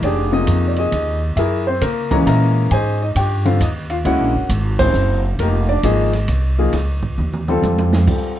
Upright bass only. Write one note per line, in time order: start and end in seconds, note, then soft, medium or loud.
0.02 0.46 F1 medium
0.47 0.90 F2 medium
0.92 1.35 D#2 medium
1.36 1.80 F#2 medium
1.81 2.25 C#3 medium
2.26 2.69 A#2 medium
2.71 3.14 G#2 medium
3.15 3.59 G2 medium
3.60 4.04 D#2 medium
4.05 4.19 C#2 medium
4.19 4.34 A#1 medium
4.34 4.48 F#1 medium
4.49 4.93 G#1 medium
4.94 5.38 F#1 medium
5.39 5.82 F1 medium
5.83 6.27 G#1 medium
6.28 6.72 C2 medium
6.73 7.17 C#2 medium
7.18 7.61 D#2 medium
7.62 8.06 F2 medium